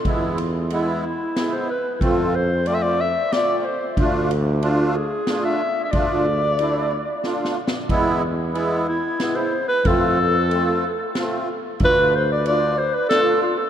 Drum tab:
RD |x--x--x-----x-----|x-----x-----x-----|x--x--x-----x-----|x-----x-----------|
SD |------------o-----|------------o-----|------------o-----|------------o-o-o-|
BD |o-----------------|o-----------------|o-----------------|o-----------------|

RD |x-----x-----x-----|x-----x-----x-----|x-----x-----x-----|
SD |------------o-----|------------o-----|------------o-----|
BD |o-----------------|o-----------------|o-----------------|